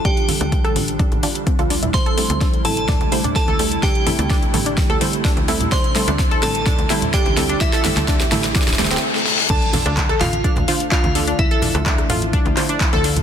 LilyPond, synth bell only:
\new Staff \with { instrumentName = "Synth bell" } { \time 4/4 \key d \minor \tempo 4 = 127 <g' g''>1 | <c'' c'''>4. <a' a''>4. <a' a''>4 | <g' g''>1 | <c'' c'''>4. <a' a''>4. <g' g''>4 |
<e' e''>2. r4 | <a' a''>4. <f' f''>4. <f' f''>4 | <e' e''>1 | }